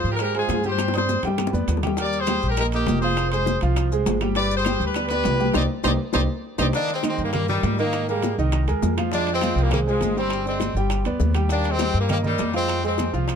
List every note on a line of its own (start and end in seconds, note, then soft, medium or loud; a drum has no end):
0.00 0.14 F3 medium
0.00 0.15 F4 medium
0.00 0.15 F5 medium
0.04 0.46 G#2 medium
0.04 high conga soft
0.04 maracas soft
0.11 0.16 G4 medium
0.11 0.17 A#4 medium
0.19 0.32 G#3 medium
0.19 0.34 G4 medium
0.19 0.32 G#4 medium
0.19 0.35 A#4 medium
0.19 0.32 C5 medium
0.19 high bongo medium
0.19 high conga soft
0.19 high timbale loud
0.19 claves medium
0.19 maracas medium
0.35 0.59 G#3 medium
0.35 0.63 F4 medium
0.35 0.59 G#4 medium
0.35 0.64 G#4 medium
0.35 0.60 C5 medium
0.35 high conga soft
0.35 high timbale medium
0.49 1.18 G2 medium
0.49 high bongo medium
0.49 low bongo medium
0.49 high conga medium
0.49 high timbale medium
0.49 low timbale medium
0.49 maracas medium
0.64 0.89 G3 medium
0.64 0.89 G4 medium
0.64 0.93 G4 medium
0.64 0.93 C5 medium
0.64 0.89 G5 medium
0.64 high conga medium
0.64 maracas soft
0.78 high bongo medium
0.78 high conga soft
0.78 high timbale medium
0.78 claves medium
0.78 maracas medium
0.88 high bongo loud
0.94 1.18 C4 medium
0.94 1.22 G#4 medium
0.94 1.18 C5 medium
0.94 1.23 C5 medium
0.94 1.19 D5 medium
0.94 high bongo medium
0.94 high conga soft
0.94 high timbale medium
0.94 maracas medium
1.09 high conga medium
1.09 low timbale medium
1.09 maracas medium
1.23 1.51 G2 medium
1.23 1.49 G3 medium
1.23 1.49 G4 medium
1.23 1.49 G5 medium
1.23 high timbale medium
1.23 maracas soft
1.27 low bongo medium
1.38 low bongo medium
1.38 high conga medium
1.38 high timbale medium
1.38 claves medium
1.38 maracas medium
1.47 low bongo medium
1.53 1.67 F2 medium
1.53 1.77 B3 medium
1.53 1.78 B4 medium
1.53 1.78 D5 medium
1.53 high conga medium
1.53 maracas soft
1.68 2.37 D#2 medium
1.68 high timbale medium
1.68 low timbale medium
1.68 maracas medium
1.77 low bongo medium
1.83 1.95 G3 medium
1.83 1.95 G4 medium
1.83 1.95 G5 medium
1.83 low bongo medium
1.83 low conga medium
1.83 high timbale medium
1.83 claves medium
1.83 maracas soft
1.97 2.22 G3 medium
1.97 2.23 G4 medium
1.97 2.17 A#4 medium
1.97 2.18 D5 medium
1.97 2.23 G5 medium
1.97 high bongo medium
1.97 high conga soft
1.97 high timbale medium
1.97 maracas medium
2.13 high conga soft
2.13 maracas medium
2.19 2.48 G#4 medium
2.19 2.48 C5 loud
2.27 2.52 G3 medium
2.27 2.53 G4 medium
2.27 2.53 G5 medium
2.27 high bongo medium
2.27 high conga medium
2.27 high timbale loud
2.27 low timbale medium
2.27 claves medium
2.27 maracas medium
2.42 2.84 A#1 medium
2.42 maracas soft
2.49 2.57 G4 medium
2.49 2.57 A#4 medium
2.57 2.70 A#3 medium
2.57 2.65 G4 medium
2.57 2.65 A#4 loud
2.57 2.70 A#4 medium
2.57 2.71 D#5 medium
2.57 high bongo medium
2.57 high conga soft
2.57 high timbale medium
2.57 claves medium
2.57 maracas medium
2.72 2.98 A#3 medium
2.72 3.01 D#4 medium
2.72 3.01 G4 medium
2.72 2.98 A#4 medium
2.72 2.98 D#5 medium
2.72 high conga soft
2.72 high timbale medium
2.72 maracas medium
2.87 3.56 F1 medium
2.87 high bongo medium
2.87 low bongo medium
2.87 high conga medium
2.87 high timbale medium
2.87 low timbale medium
2.87 maracas medium
3.01 3.27 F3 medium
3.01 3.28 F4 medium
3.01 3.30 G#4 medium
3.01 3.29 C5 loud
3.01 3.28 F5 medium
3.01 high conga medium
3.01 maracas soft
3.17 high bongo medium
3.17 high timbale medium
3.17 claves medium
3.17 maracas medium
3.31 3.57 G#3 medium
3.31 3.60 G#4 medium
3.31 3.57 G#4 medium
3.31 3.59 C5 medium
3.31 3.57 C5 medium
3.31 high bongo soft
3.31 high conga soft
3.31 high timbale medium
3.31 maracas medium
3.46 high bongo medium
3.46 high conga medium
3.46 low timbale medium
3.46 maracas medium
3.61 4.03 C2 medium
3.61 3.87 F3 medium
3.61 3.87 F4 medium
3.61 3.87 F5 medium
3.61 high bongo soft
3.61 high timbale medium
3.61 maracas soft
3.76 high bongo medium
3.76 high conga soft
3.76 high timbale medium
3.76 claves medium
3.76 maracas medium
3.92 4.16 G#3 medium
3.92 4.16 G#4 medium
3.92 4.16 C5 medium
3.92 high conga soft
3.92 maracas medium
4.06 4.75 G1 medium
4.06 high bongo medium
4.06 low bongo medium
4.06 high conga medium
4.06 high timbale medium
4.06 low timbale medium
4.06 maracas medium
4.21 4.34 G3 medium
4.21 4.34 G4 medium
4.21 4.34 G5 medium
4.21 high bongo soft
4.21 high conga medium
4.21 high timbale medium
4.21 claves medium
4.21 maracas soft
4.35 4.60 G3 medium
4.35 4.61 G4 medium
4.35 4.55 B4 medium
4.35 4.55 D5 loud
4.35 4.61 G5 medium
4.35 high bongo medium
4.35 high conga soft
4.35 high timbale medium
4.35 maracas medium
4.51 high conga soft
4.51 maracas medium
4.56 4.84 G#4 medium
4.56 4.84 C5 loud
4.65 4.91 G3 medium
4.65 4.91 G4 medium
4.65 4.91 G5 medium
4.65 high bongo medium
4.65 high conga medium
4.65 high timbale medium
4.65 low timbale medium
4.65 claves medium
4.65 maracas medium
4.80 5.22 D2 medium
4.80 high conga soft
4.80 maracas soft
4.84 5.09 G4 medium
4.84 5.06 B4 medium
4.94 5.08 B3 medium
4.94 5.08 B4 medium
4.94 5.08 D5 medium
4.94 high bongo medium
4.94 high conga soft
4.94 high timbale medium
4.94 claves medium
4.94 maracas medium
5.08 5.35 B3 medium
5.08 5.52 G4 medium
5.08 5.50 B4 medium
5.08 5.35 B4 medium
5.08 high conga soft
5.08 high timbale medium
5.08 maracas medium
5.12 5.36 D5 medium
5.24 5.53 C2 medium
5.24 high bongo medium
5.24 low bongo medium
5.24 high conga medium
5.24 high timbale medium
5.24 low timbale medium
5.24 maracas medium
5.40 5.52 G3 medium
5.40 5.52 G4 medium
5.40 5.52 G5 medium
5.40 high conga medium
5.40 maracas soft
5.53 5.66 C2 medium
5.53 5.64 D#4 medium
5.53 5.64 G4 medium
5.53 5.62 C5 medium
5.53 5.64 C5 medium
5.53 5.62 D5 medium
5.53 5.62 D#5 medium
5.53 high bongo loud
5.53 high conga medium
5.53 high timbale medium
5.53 claves medium
5.53 maracas medium
5.84 5.96 C2 loud
5.84 5.94 D#4 medium
5.84 5.94 G4 medium
5.84 5.94 C5 medium
5.84 5.92 C5 medium
5.84 5.91 D5 loud
5.84 5.92 D#5 loud
5.84 high bongo medium
5.84 high conga medium
5.84 high timbale medium
5.84 claves medium
5.84 maracas loud
6.13 6.26 C2 medium
6.13 6.24 D#4 medium
6.13 6.24 G4 medium
6.13 6.24 C5 medium
6.13 6.21 C5 medium
6.13 6.22 D5 medium
6.13 6.21 D#5 loud
6.13 high bongo medium
6.13 high conga medium
6.13 high timbale loud
6.13 claves medium
6.13 maracas medium
6.58 6.70 C2 medium
6.58 6.68 D#4 medium
6.58 6.68 G4 medium
6.58 6.68 C5 medium
6.58 6.66 C5 medium
6.58 6.66 D5 medium
6.58 6.66 D#5 medium
6.58 high bongo medium
6.58 high conga medium
6.58 high timbale medium
6.58 claves loud
6.58 maracas medium
6.73 6.98 D#3 medium
6.73 6.93 A#3 medium
6.73 6.92 D4 loud
6.73 6.99 D#4 medium
6.73 6.99 D#5 medium
6.73 high bongo medium
6.73 high conga soft
6.73 high timbale medium
6.73 maracas medium
6.89 high bongo soft
6.89 high conga soft
6.89 high timbale medium
6.89 maracas soft
6.94 7.01 G#3 medium
6.94 7.01 C4 medium
7.03 7.28 D#3 medium
7.03 7.28 D#4 medium
7.03 7.29 D#5 medium
7.03 high bongo medium
7.03 high conga medium
7.03 high timbale medium
7.03 claves medium
7.03 maracas medium
7.08 7.23 G#3 medium
7.08 7.22 C4 medium
7.18 7.60 G2 medium
7.18 high conga soft
7.18 maracas soft
7.23 7.33 G3 medium
7.23 7.31 A#3 medium
7.32 7.46 G3 medium
7.32 7.47 A#3 loud
7.32 7.46 G4 medium
7.32 7.46 A#4 medium
7.32 high bongo medium
7.32 high conga soft
7.32 low conga medium
7.32 high timbale medium
7.32 claves medium
7.32 maracas medium
7.47 7.76 D#3 medium
7.47 7.75 G3 medium
7.47 7.73 G3 medium
7.47 7.73 G4 medium
7.47 7.74 A#4 medium
7.47 high bongo soft
7.47 high conga soft
7.47 low conga medium
7.47 maracas soft
7.63 8.32 G#2 medium
7.63 high bongo soft
7.63 low bongo medium
7.63 high conga medium
7.63 high timbale medium
7.63 low timbale medium
7.63 maracas medium
7.78 8.03 D#3 medium
7.78 8.07 D#3 medium
7.78 8.05 A#3 loud
7.78 8.03 D#4 medium
7.78 8.03 D#5 medium
7.78 high bongo soft
7.78 maracas soft
7.93 high bongo medium
7.93 high conga soft
7.93 high timbale medium
7.93 claves medium
7.93 maracas medium
8.08 8.36 G3 medium
8.08 8.33 G#3 medium
8.08 8.35 A#3 medium
8.08 8.33 G#4 medium
8.08 8.33 A#4 medium
8.08 high bongo soft
8.08 high conga soft
8.08 maracas soft
8.22 high bongo medium
8.22 high conga medium
8.22 high timbale medium
8.22 maracas medium
8.38 8.66 C2 medium
8.38 8.63 D#3 medium
8.38 8.63 D#4 medium
8.38 8.63 D#5 medium
8.38 maracas soft
8.52 high bongo medium
8.52 high conga soft
8.52 high timbale loud
8.52 claves medium
8.52 maracas medium
8.67 8.81 D#2 medium
8.67 8.92 G#3 medium
8.67 8.92 G#4 medium
8.67 8.92 A#4 medium
8.67 high bongo soft
8.67 high conga soft
8.67 high timbale medium
8.67 maracas soft
8.82 9.51 F2 medium
8.82 high bongo soft
8.82 low bongo medium
8.82 high conga medium
8.82 low timbale medium
8.82 maracas medium
8.97 9.09 F3 medium
8.97 9.10 F4 medium
8.97 9.10 F5 medium
8.97 high bongo soft
8.97 high conga medium
8.97 high timbale loud
8.97 claves medium
8.97 maracas soft
9.12 9.37 F3 medium
9.12 9.31 G#3 medium
9.12 9.30 D4 loud
9.12 9.37 F4 medium
9.12 9.37 F5 medium
9.12 high bongo medium
9.12 high conga soft
9.12 high timbale medium
9.12 maracas medium
9.27 high bongo soft
9.27 high conga soft
9.27 high timbale medium
9.27 maracas soft
9.32 9.60 G#3 medium
9.32 9.60 C4 loud
9.41 9.66 F3 medium
9.41 9.66 F4 medium
9.41 9.66 F5 medium
9.41 high bongo medium
9.41 high conga medium
9.41 high timbale medium
9.41 claves medium
9.41 maracas medium
9.56 9.97 C2 medium
9.56 high conga soft
9.56 maracas soft
9.62 9.71 G3 medium
9.62 9.71 A#3 medium
9.71 9.79 G3 medium
9.71 9.84 G#3 medium
9.71 9.79 A#3 medium
9.71 9.84 G#4 medium
9.71 9.84 C5 medium
9.71 high bongo medium
9.71 high conga soft
9.71 low conga medium
9.71 high timbale loud
9.71 claves medium
9.71 maracas medium
9.86 10.14 F3 medium
9.86 10.14 G#3 medium
9.86 10.11 G#3 medium
9.86 10.11 G#4 medium
9.86 10.11 C5 medium
9.86 high bongo soft
9.86 high conga soft
9.86 maracas soft
10.01 10.70 G1 loud
10.01 high bongo soft
10.01 low bongo medium
10.01 high conga medium
10.01 high timbale medium
10.01 maracas medium
10.17 10.41 G3 medium
10.17 10.44 G3 medium
10.17 10.44 C4 loud
10.17 10.41 G4 medium
10.17 10.41 G5 medium
10.17 high bongo soft
10.17 high conga soft
10.17 maracas soft
10.30 high bongo medium
10.30 high conga soft
10.30 high timbale medium
10.30 claves medium
10.30 maracas medium
10.46 10.75 G#3 medium
10.46 10.70 C4 medium
10.46 10.75 C4 medium
10.46 10.71 C5 medium
10.46 10.71 D5 medium
10.46 high bongo soft
10.46 high conga soft
10.46 maracas soft
10.60 high bongo medium
10.60 high conga medium
10.60 high timbale medium
10.60 maracas medium
10.75 11.03 G1 medium
10.75 11.01 G3 medium
10.75 11.01 G4 medium
10.75 11.01 G5 medium
10.75 maracas soft
10.90 high bongo medium
10.90 high conga soft
10.90 high timbale loud
10.90 claves medium
10.90 maracas medium
11.04 11.19 D2 medium
11.04 11.30 B3 medium
11.04 11.30 B4 medium
11.04 11.30 D5 medium
11.04 high bongo soft
11.04 high conga soft
11.04 high timbale medium
11.04 maracas soft
11.20 11.89 D#2 loud
11.20 high bongo soft
11.20 low bongo medium
11.20 high conga medium
11.20 maracas medium
11.35 11.47 G3 medium
11.35 11.47 G4 medium
11.35 11.47 G5 medium
11.35 high bongo soft
11.35 high conga medium
11.35 high timbale medium
11.35 claves medium
11.35 maracas soft
11.49 11.75 G3 medium
11.49 11.69 A#3 medium
11.49 11.69 D4 loud
11.49 11.75 G4 medium
11.49 11.75 G5 medium
11.49 high bongo medium
11.49 high timbale medium
11.49 maracas medium
11.64 high bongo soft
11.64 high conga soft
11.64 high timbale medium
11.64 maracas soft
11.70 12.00 G#3 medium
11.70 11.99 C4 loud
11.79 12.04 G3 medium
11.79 12.04 G4 medium
11.79 12.05 G5 medium
11.79 high bongo medium
11.79 high conga medium
11.79 high timbale medium
11.79 claves medium
11.79 maracas medium
11.94 12.36 G2 medium
11.94 high conga soft
11.94 maracas soft
12.00 12.09 G3 medium
12.00 12.09 A#3 medium
12.09 12.17 G3 medium
12.09 12.22 A#3 medium
12.09 12.17 A#3 medium
12.09 12.22 A#4 medium
12.09 12.22 D#5 medium
12.09 high bongo medium
12.09 high conga soft
12.09 low conga medium
12.09 high timbale medium
12.09 claves medium
12.09 maracas medium
12.23 12.53 D#3 medium
12.23 12.52 G3 medium
12.23 12.48 A#3 medium
12.23 12.48 A#4 medium
12.23 12.48 D#5 medium
12.23 high bongo soft
12.23 high conga soft
12.23 low conga medium
12.23 maracas soft
12.38 13.08 F2 medium
12.38 high bongo soft
12.38 low bongo medium
12.38 high conga medium
12.38 high timbale medium
12.38 maracas medium
12.54 12.78 F3 medium
12.54 12.82 G#3 medium
12.54 12.82 C4 loud
12.54 12.78 F4 medium
12.54 12.78 F5 medium
12.54 high bongo soft
12.54 high conga soft
12.54 maracas soft
12.68 high bongo medium
12.68 high conga soft
12.68 high timbale medium
12.68 claves medium
12.68 maracas medium
12.83 13.08 G#3 medium
12.83 13.12 G#3 medium
12.83 13.12 C4 medium
12.83 13.08 G#4 medium
12.83 13.08 C5 medium
12.83 high bongo soft
12.83 high conga soft
12.83 maracas soft
12.98 high bongo medium
12.98 high conga loud
12.98 high timbale medium
12.98 maracas medium
13.13 13.36 C2 medium
13.13 13.36 F3 medium
13.13 13.36 F4 medium
13.13 13.36 F5 medium
13.13 maracas soft
13.28 high bongo medium
13.28 high conga soft
13.28 high timbale medium
13.28 claves medium
13.28 maracas medium